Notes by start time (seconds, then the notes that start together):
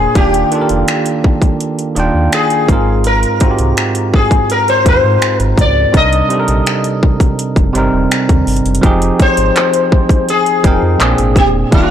Already playing: A#2 A#3 D4 G#4 C5
0.15 D#1 D#3 A#3 D4 F4 G4, kick, closed hi-hat
0.19 G4
0.34 closed hi-hat
0.51 D#3 A#3 D4 F4, closed hi-hat
0.55 A4
0.61 A#4
0.69 F1, closed hi-hat
0.88 finger snap, closed hi-hat
1.06 closed hi-hat
1.24 kick
1.42 kick, closed hi-hat
1.61 closed hi-hat
1.79 closed hi-hat
1.95 D#1 D#3 A#3 D4 F4, closed hi-hat
2.00 G5
2.15 D#2
2.32 G#4, finger snap, closed hi-hat
2.50 closed hi-hat
2.68 G#1 G#2 G#3 C4 F4, kick, closed hi-hat
2.72 A#4
3.04 A#4, closed hi-hat
3.23 closed hi-hat
3.40 G#2 G#3 C4 F4, kick, closed hi-hat
3.45 F#4
3.51 G4
3.59 C2, closed hi-hat
3.77 finger snap, closed hi-hat
3.95 closed hi-hat
4.14 G#4, kick
4.31 kick, closed hi-hat
4.50 A#4, closed hi-hat
4.68 C5, closed hi-hat
4.85 D#2 G#2 G#3 C4 F4 C5, kick, closed hi-hat
4.89 A#4
5.04 G#2
5.22 finger snap, closed hi-hat
5.40 G#1 A#4, closed hi-hat
5.58 C#2 D5, kick, closed hi-hat
5.93 C2 C3 G3 D4 D#4, kick, closed hi-hat
5.97 A#4 D#5
6.13 closed hi-hat
6.29 C3 G3 C4 D#4, closed hi-hat
6.33 A4
6.40 A#4
6.48 A#1, closed hi-hat
6.67 finger snap, closed hi-hat
6.84 closed hi-hat
7.03 kick
7.20 kick, closed hi-hat
7.39 closed hi-hat
7.56 F1, kick, closed hi-hat
7.73 G1 C3 G3 C4 D#4, closed hi-hat
7.78 A#4
7.93 D#1
8.11 finger snap, closed hi-hat
8.29 D#2, kick, closed hi-hat
8.47 G1, closed hi-hat, open hi-hat
8.57 closed hi-hat
8.65 F#1, closed hi-hat
8.75 closed hi-hat
8.81 F1 F3 C4 D#4 G4, kick, closed hi-hat
8.86 G#4
9.02 closed hi-hat
9.20 C5, kick, closed hi-hat
9.37 G#1, closed hi-hat
9.56 clap, closed hi-hat
9.73 closed hi-hat
9.92 kick
10.09 kick, closed hi-hat
10.29 G#4, closed hi-hat
10.46 closed hi-hat
10.63 F1 F3 C4 D#4 G5, kick, closed hi-hat
10.67 A#4
10.83 F2
10.99 A#1 A#2 A#3 C4 D4, clap, closed hi-hat
11.03 G#4
11.18 G#1, closed hi-hat
11.36 E1 G4, kick, closed hi-hat
11.71 D#1 D#3 A#3 D4 F4, kick, closed hi-hat
11.75 G4